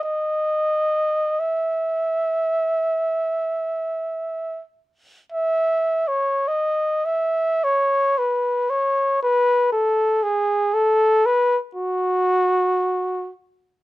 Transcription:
0, 0, Header, 1, 2, 480
1, 0, Start_track
1, 0, Key_signature, 4, "major"
1, 0, Tempo, 1327434
1, 20, Time_signature, 4, 2, 24, 8
1, 980, Tempo, 1229508
1, 1460, Tempo, 1392111
1, 1940, Tempo, 1158301
1, 2900, Tempo, 1065719
1, 3380, Tempo, 1013514
1, 4820, Tempo, 1069519
1, 5752, End_track
2, 0, Start_track
2, 0, Title_t, "Trumpet"
2, 0, Program_c, 0, 56
2, 15, Note_on_c, 0, 75, 56
2, 506, Note_on_c, 0, 76, 45
2, 512, Note_off_c, 0, 75, 0
2, 1704, Note_off_c, 0, 76, 0
2, 1937, Note_on_c, 0, 76, 58
2, 2250, Note_on_c, 0, 73, 51
2, 2256, Note_off_c, 0, 76, 0
2, 2415, Note_on_c, 0, 75, 53
2, 2422, Note_off_c, 0, 73, 0
2, 2654, Note_on_c, 0, 76, 56
2, 2660, Note_off_c, 0, 75, 0
2, 2897, Note_on_c, 0, 73, 65
2, 2904, Note_off_c, 0, 76, 0
2, 3141, Note_on_c, 0, 71, 52
2, 3148, Note_off_c, 0, 73, 0
2, 3373, Note_on_c, 0, 73, 60
2, 3380, Note_off_c, 0, 71, 0
2, 3616, Note_off_c, 0, 73, 0
2, 3624, Note_on_c, 0, 71, 66
2, 3857, Note_off_c, 0, 71, 0
2, 3860, Note_on_c, 0, 69, 54
2, 4098, Note_on_c, 0, 68, 61
2, 4105, Note_off_c, 0, 69, 0
2, 4340, Note_on_c, 0, 69, 71
2, 4347, Note_off_c, 0, 68, 0
2, 4585, Note_on_c, 0, 71, 72
2, 4592, Note_off_c, 0, 69, 0
2, 4737, Note_off_c, 0, 71, 0
2, 4819, Note_on_c, 0, 66, 69
2, 5517, Note_off_c, 0, 66, 0
2, 5752, End_track
0, 0, End_of_file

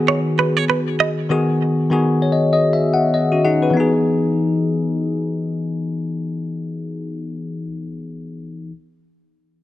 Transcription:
0, 0, Header, 1, 3, 480
1, 0, Start_track
1, 0, Key_signature, 4, "major"
1, 0, Tempo, 612245
1, 1022, Time_signature, 4, 2, 24, 8
1, 7553, End_track
2, 0, Start_track
2, 0, Title_t, "Clean electric guitar"
2, 0, Program_c, 0, 27
2, 65, Note_on_c, 0, 73, 83
2, 145, Note_off_c, 0, 73, 0
2, 305, Note_on_c, 0, 71, 75
2, 444, Note_off_c, 0, 71, 0
2, 444, Note_on_c, 0, 73, 69
2, 502, Note_off_c, 0, 73, 0
2, 545, Note_on_c, 0, 71, 75
2, 625, Note_off_c, 0, 71, 0
2, 785, Note_on_c, 0, 75, 80
2, 865, Note_off_c, 0, 75, 0
2, 7553, End_track
3, 0, Start_track
3, 0, Title_t, "Tine electric piano"
3, 0, Program_c, 1, 4
3, 0, Control_c, 1, 64, 127
3, 0, Note_on_c, 1, 51, 87
3, 0, Note_on_c, 1, 59, 80
3, 0, Note_on_c, 1, 66, 80
3, 0, Note_on_c, 1, 68, 94
3, 394, Note_off_c, 1, 51, 0
3, 397, Note_off_c, 1, 59, 0
3, 401, Note_off_c, 1, 66, 0
3, 404, Note_off_c, 1, 68, 0
3, 1012, Note_on_c, 1, 51, 83
3, 1018, Note_on_c, 1, 59, 77
3, 1025, Note_on_c, 1, 66, 76
3, 1031, Note_on_c, 1, 68, 91
3, 1431, Note_off_c, 1, 51, 0
3, 1434, Note_off_c, 1, 59, 0
3, 1438, Note_off_c, 1, 66, 0
3, 1441, Note_off_c, 1, 68, 0
3, 1492, Note_on_c, 1, 51, 84
3, 1499, Note_on_c, 1, 59, 81
3, 1505, Note_on_c, 1, 66, 78
3, 1511, Note_on_c, 1, 68, 94
3, 1742, Note_on_c, 1, 73, 67
3, 1816, Note_off_c, 1, 73, 0
3, 1822, Note_on_c, 1, 75, 68
3, 1971, Note_off_c, 1, 75, 0
3, 1982, Note_on_c, 1, 75, 76
3, 2131, Note_off_c, 1, 75, 0
3, 2142, Note_on_c, 1, 76, 66
3, 2291, Note_off_c, 1, 76, 0
3, 2302, Note_on_c, 1, 78, 66
3, 2314, Note_off_c, 1, 51, 0
3, 2317, Note_off_c, 1, 59, 0
3, 2321, Note_off_c, 1, 66, 0
3, 2324, Note_off_c, 1, 68, 0
3, 2450, Note_off_c, 1, 78, 0
3, 2462, Note_on_c, 1, 75, 68
3, 2601, Note_on_c, 1, 66, 61
3, 2606, Note_on_c, 1, 61, 52
3, 2685, Note_off_c, 1, 75, 0
3, 2697, Note_off_c, 1, 66, 0
3, 2699, Note_off_c, 1, 61, 0
3, 2702, Note_on_c, 1, 68, 69
3, 2702, Note_on_c, 1, 78, 70
3, 2707, Note_on_c, 1, 63, 60
3, 2834, Note_off_c, 1, 68, 0
3, 2837, Note_off_c, 1, 63, 0
3, 2841, Note_on_c, 1, 71, 63
3, 2846, Note_on_c, 1, 66, 53
3, 2902, Note_on_c, 1, 52, 80
3, 2925, Note_off_c, 1, 78, 0
3, 2928, Note_on_c, 1, 59, 72
3, 2951, Control_c, 1, 64, 0
3, 2954, Note_on_c, 1, 63, 75
3, 2981, Note_on_c, 1, 68, 86
3, 3069, Note_off_c, 1, 71, 0
3, 3071, Note_off_c, 1, 66, 0
3, 3111, Control_c, 1, 64, 127
3, 5987, Note_off_c, 1, 52, 0
3, 6000, Note_off_c, 1, 59, 0
3, 6013, Note_off_c, 1, 63, 0
3, 6026, Note_off_c, 1, 68, 0
3, 6832, Control_c, 1, 64, 0
3, 7553, End_track
0, 0, End_of_file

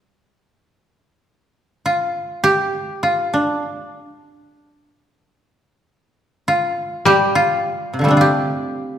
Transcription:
0, 0, Header, 1, 3, 480
1, 0, Start_track
1, 0, Tempo, 1174168
1, 44, Time_signature, 4, 2, 24, 8
1, 1483, Tempo, 1138520
1, 3742, End_track
2, 0, Start_track
2, 0, Title_t, "Koto"
2, 0, Program_c, 0, 107
2, 759, Note_on_c, 0, 65, 57
2, 996, Note_on_c, 0, 67, 81
2, 1237, Note_off_c, 0, 65, 0
2, 1238, Note_on_c, 0, 65, 57
2, 1364, Note_on_c, 0, 62, 53
2, 1840, Note_off_c, 0, 67, 0
2, 2153, Note_off_c, 0, 65, 0
2, 2383, Note_off_c, 0, 62, 0
2, 2685, Note_on_c, 0, 65, 64
2, 2931, Note_on_c, 0, 67, 84
2, 3052, Note_off_c, 0, 65, 0
2, 3054, Note_on_c, 0, 65, 74
2, 3299, Note_on_c, 0, 48, 31
2, 3322, Note_on_c, 0, 50, 29
2, 3331, Note_on_c, 0, 53, 35
2, 3343, Note_on_c, 0, 55, 37
2, 3346, Note_on_c, 0, 57, 38
2, 3362, Note_on_c, 0, 60, 45
2, 3371, Note_on_c, 0, 62, 48
2, 3387, Note_off_c, 0, 50, 0
2, 3396, Note_off_c, 0, 48, 0
2, 3396, Note_off_c, 0, 65, 0
2, 3397, Note_on_c, 0, 65, 45
2, 3413, Note_off_c, 0, 67, 0
2, 3414, Note_on_c, 0, 67, 66
2, 3422, Note_off_c, 0, 55, 0
2, 3440, Note_off_c, 0, 53, 0
2, 3742, Note_off_c, 0, 57, 0
2, 3742, Note_off_c, 0, 60, 0
2, 3742, Note_off_c, 0, 62, 0
2, 3742, Note_off_c, 0, 65, 0
2, 3742, Note_off_c, 0, 67, 0
2, 3742, End_track
3, 0, Start_track
3, 0, Title_t, "Koto"
3, 0, Program_c, 1, 107
3, 0, Note_on_c, 1, 55, 39
3, 312, Note_off_c, 1, 55, 0
3, 2928, Note_on_c, 1, 55, 50
3, 3742, Note_off_c, 1, 55, 0
3, 3742, End_track
0, 0, End_of_file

